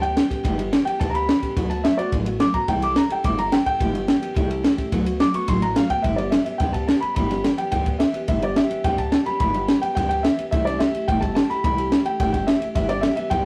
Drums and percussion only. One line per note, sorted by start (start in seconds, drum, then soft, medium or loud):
0.03 ride medium
0.17 snare loud
0.17 ride medium
0.31 kick medium
0.31 snare soft
0.31 ride medium
0.45 kick loud
0.45 ride loud
0.59 ride medium
0.73 snare loud
0.73 ride medium
0.87 ride medium
1.01 kick loud
1.01 ride medium
1.15 ride medium
1.29 snare loud
1.29 ride medium
1.43 kick medium
1.43 snare soft
1.43 ride medium
1.57 kick loud
1.57 ride medium
1.71 ride medium
1.85 snare loud
1.85 ride medium
1.99 ride medium
2.12 kick loud
2.12 ride medium
2.26 ride medium
2.40 snare loud
2.40 ride medium
2.54 kick medium
2.54 ride medium
2.68 kick loud
2.68 ride medium
2.82 ride medium
2.96 snare loud
2.96 ride medium
3.10 ride medium
3.24 kick loud
3.24 ride loud
3.38 ride medium
3.52 snare loud
3.52 ride medium
3.66 kick medium
3.66 ride medium
3.81 kick loud
3.81 ride medium
3.95 ride medium
4.08 snare loud
4.08 ride medium
4.23 ride medium
4.36 kick loud
4.36 ride medium
4.51 ride medium
4.64 snare loud
4.64 ride medium
4.78 kick medium
4.78 snare soft
4.78 ride medium
4.92 kick loud
4.92 ride medium
5.06 ride medium
5.20 snare loud
5.20 ride medium
5.34 ride medium
5.48 kick loud
5.48 ride loud
5.62 ride medium
5.76 snare loud
5.76 ride medium
5.90 kick medium
5.90 ride medium
6.04 kick loud
6.04 ride medium
6.18 ride medium
6.32 snare loud
6.32 ride medium
6.46 ride medium
6.60 kick loud
6.60 snare soft
6.60 ride medium
6.74 kick medium
6.74 ride medium
6.88 snare loud
6.88 ride medium
7.02 ride medium
7.16 kick loud
7.16 ride medium
7.31 snare soft
7.31 ride medium
7.44 snare loud
7.44 ride medium
7.58 ride medium
7.72 kick loud
7.72 ride medium
7.86 kick medium
7.86 ride medium
8.00 snare loud
8.00 ride medium
8.14 ride medium
8.28 kick loud
8.28 ride medium
8.42 ride medium
8.56 snare loud
8.56 ride medium
8.71 ride medium
8.84 kick loud
8.84 snare soft
8.84 ride medium
8.98 kick medium
8.98 ride medium
9.12 snare loud
9.12 ride medium
9.26 snare soft
9.26 ride medium
9.40 kick loud
9.40 ride medium
9.54 ride medium
9.68 snare loud
9.68 ride medium
9.83 ride medium
9.97 kick loud
9.97 snare soft
9.97 ride medium
10.11 ride medium
10.24 snare loud
10.24 ride medium
10.39 ride medium
10.52 kick loud
10.52 ride loud
10.67 snare soft
10.67 ride medium
10.80 snare loud
10.80 ride medium
10.95 ride medium
11.08 kick loud
11.08 ride medium
11.22 kick medium
11.22 ride medium
11.36 snare loud
11.36 ride medium
11.51 snare soft
11.51 ride medium
11.64 kick loud
11.64 ride medium
11.78 ride medium
11.92 snare loud
11.92 ride medium
12.06 ride medium
12.20 kick loud
12.20 snare soft
12.20 ride medium
12.34 kick medium
12.34 snare soft
12.34 ride medium
12.48 snare loud
12.48 ride medium
12.62 ride medium
12.75 kick loud
12.75 ride medium
12.89 snare soft
12.89 ride medium
13.03 snare loud
13.03 ride medium
13.17 ride medium
13.31 kick loud
13.31 ride medium